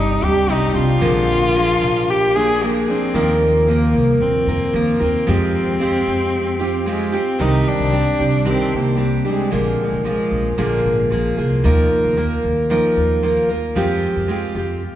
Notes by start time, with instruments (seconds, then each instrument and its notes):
Already playing: upright bass G1, steel-string acoustic guitar G3 C4 D4 G4
0.00 cello D#4
0.22 upright bass D2, steel-string acoustic guitar G3 C4 D4 G4, cello G4
0.48 upright bass C2, steel-string acoustic guitar G3 C4 D4 G4, cello D#4
0.74 upright bass C2, steel-string acoustic guitar G3 C4 D4 G4
0.78 cello F4
1.01 upright bass A#1, steel-string acoustic guitar A#2 D3 F3 A#3 D4 G#4
1.55 steel-string acoustic guitar F3 A#3 D4 G#4
1.82 upright bass A#1
2.10 cello G4
2.34 steel-string acoustic guitar F3 A#3 D4 G#4, cello G#4
2.62 steel-string acoustic guitar F3 A#3 D4 G#4, cello A#3
2.88 steel-string acoustic guitar F3 A#3 D4 G#4, cello C4
3.14 upright bass D#2, steel-string acoustic guitar D#3 F3 A#3 F4 A#4
3.43 cello A#3
3.68 steel-string acoustic guitar F3 A#3 F4 A#4
3.93 upright bass C2
4.20 upright bass A#1, cello C4
4.47 upright bass F2, steel-string acoustic guitar A#3 F4 A#4
4.73 upright bass D#2, steel-string acoustic guitar F3 A#3 F4 A#4, cello A#3
5.00 upright bass D#2, steel-string acoustic guitar A#3 F4 A#4, cello C4
5.27 upright bass F2, steel-string acoustic guitar F3 G#3 C4 F4 G4
5.79 steel-string acoustic guitar G#3 C4 F4 G4
6.07 upright bass F2
6.60 steel-string acoustic guitar C4 F4 G4
6.86 steel-string acoustic guitar G#3 C4 F4 G4, cello G#3
7.12 cello C4, steel-string acoustic guitar C4 F4 G4
7.39 upright bass C2, steel-string acoustic guitar C3 D#3 G3 C4 D4 G4, cello D#4
7.67 cello D4
7.80 upright bass C2
7.91 steel-string acoustic guitar G3 C4 D4 G4
8.19 upright bass C2, steel-string acoustic guitar G3 C4 D4 G4
8.45 steel-string acoustic guitar C3 D#3 G3 C4 D4 G4
8.49 cello C4
8.73 upright bass C2, cello A#3
8.97 steel-string acoustic guitar G3 C4 D4 G4
9.25 steel-string acoustic guitar G3 C4 D4 G4, cello G#3
9.51 upright bass A#1, steel-string acoustic guitar A#2 D3 F3 A#3 F4 G#4
9.82 cello G#3
9.92 upright bass A#1
10.05 steel-string acoustic guitar F3 A#3 F4 G#4, cello G#3
10.31 upright bass A#1
10.58 upright bass A#1, steel-string acoustic guitar A#2 D3 F3 A#3 F4 G#4, cello A#3
10.85 upright bass G#1
11.11 upright bass A#1, steel-string acoustic guitar F3 A#3 F4 G#4
11.37 upright bass C2, steel-string acoustic guitar F3 A#3 F4 G#4
11.64 upright bass D#2, steel-string acoustic guitar D#3 F3 A#3 F4 A#4
12.04 upright bass D#2
12.17 steel-string acoustic guitar F3 A#3 F4 A#4
12.44 upright bass D#2
12.70 steel-string acoustic guitar D#3 F3 A#3 F4 A#4
12.97 upright bass D#2
13.23 steel-string acoustic guitar F3 A#3 F4 A#4
13.50 steel-string acoustic guitar A#3 F4 A#4
13.75 upright bass F2, steel-string acoustic guitar F3 G#3 C4 F4 G4
14.16 upright bass F2
14.28 steel-string acoustic guitar G#3 C4 F4 G4
14.55 upright bass F2, steel-string acoustic guitar C4 F4 G4